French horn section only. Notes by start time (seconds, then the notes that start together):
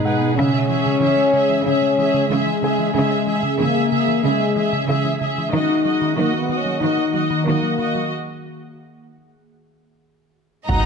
Already playing: D#4
0.36 C#4
1.66 C#4
2.29 G#3
2.93 G#3
3.58 A#3
4.23 G#3
5.53 D#4
6.17 A#3
6.38 B3
6.58 C#4
6.80 D#4
7.45 A#3